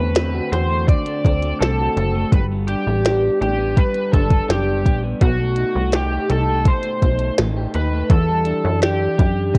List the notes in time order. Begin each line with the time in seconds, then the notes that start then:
Already playing: E2 D3 A3 C4 B4
0.15 C4, snare, closed hi-hat
0.33 F#4
0.51 E2 C4 C5, snare, closed hi-hat
0.70 A3
0.88 D3 D5, kick, closed hi-hat
1.06 A3, closed hi-hat
1.25 D2 C4, kick, closed hi-hat
1.42 A3, closed hi-hat
1.60 C2 C4 A4, snare, closed hi-hat
1.79 F#4
1.97 F#1 C4, closed hi-hat
2.15 A3
2.32 G1 G3 B4, kick, closed hi-hat
2.52 B3
2.68 D4 G4, closed hi-hat
2.87 A1 B3
3.05 D4, snare, closed hi-hat
3.40 A1 D4 G4, closed hi-hat
3.58 B3
3.76 G3 B4, kick, closed hi-hat
3.94 B3, closed hi-hat
4.12 G1 D4 A4, kick, closed hi-hat
4.30 B3, kick, closed hi-hat
4.48 F#1 D4 G4, snare, closed hi-hat
4.84 A#1 D4, kick, closed hi-hat
5.03 B3
5.21 B1 B2 F#4, kick, closed hi-hat
5.39 A3
5.56 D#4, closed hi-hat
5.75 C2 A3
5.92 D#4 G4, snare, closed hi-hat
6.12 G4
6.30 C2 D#4 A4, snare, closed hi-hat
6.49 A3
6.66 B2 C5, kick, closed hi-hat
6.83 A3, closed hi-hat
7.02 B1 D#4, kick, closed hi-hat
7.19 A3, closed hi-hat
7.38 A1 D#4, snare, closed hi-hat
7.57 G4
7.74 D#2 D#4 B4, closed hi-hat
7.92 A3
8.10 E2 E3 A4, kick, closed hi-hat
8.28 G3
8.45 D4, closed hi-hat
8.65 F#2
8.82 D4 G4, snare, closed hi-hat
9.18 F#2 D4, kick, closed hi-hat
9.54 E3, kick, closed hi-hat